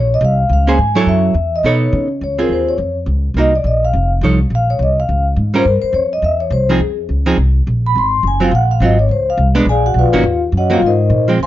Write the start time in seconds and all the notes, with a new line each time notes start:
Already playing: A#1 C#5
0.14 D#5
0.21 C2 F5
0.49 C#2 F5
0.67 A#3 C#4 G#4 C5 G#5
0.78 G#2
0.95 F#3 E4 A4 C#5
1.06 F#2 E5
1.34 E2
1.56 D#5
1.63 B2 B3 D#4 A4 C#5
1.67 C#5
1.93 C#3
2.21 C#2 C#5
2.39 C4 F4 G#4 A#4
2.49 D#2
2.53 C5
2.69 C#5
2.78 F2
3.06 C#2
3.34 C2 A#3 D#4
3.38 F#4 D#5
3.55 D5
3.64 A#1 D#5
3.85 F5
3.93 F1
4.21 C2 F3 D#4 A4 C#5
4.50 A#1
4.55 F5
4.70 C#5
4.79 C2 D#5
5.00 F5
5.09 C#2
5.36 G#2
5.54 G3 C#4 F4 A#4 C5
5.65 G2 A#4
5.82 C5, muted upright bass stroke
5.93 F2 C#5
6.13 D#5
6.22 E2 E5
6.40 C#5
6.50 C2 C5
6.69 F3 C4 D#4 G#4
6.80 F2
7.09 C#2
7.26 F3 C4 D#4 G#4
7.38 C2
7.67 A#1
7.86 B5
7.95 G#1 C6
8.23 F#1
8.27 G#5
8.40 F#3 C4 F4 F5
8.51 A#1 F#5
8.71 F5
8.80 G#1 F#3 C4 F4 D#5
8.99 C#5
9.09 C#2 C5
9.30 F5
9.37 C2
9.55 G#3 B3 D4
9.65 A#1 G#5
9.70 G#4 D5 F5
9.86 F#4 F#5
9.94 B1
9.98 F4 B4 D5 F5
10.05 A#1
10.13 G#1 D#3 A#3 C#4 F#4
10.23 D#2
10.52 F#2
10.57 F#4 C#5 D#5 F#5
10.70 F#3 A#3 C4 F5
10.75 F4
10.82 G#2
10.86 D#4 A#4 C5 D#5
11.10 A#2
11.28 F3 G#3 C4
11.39 C#2 C5 F5 G#5 C6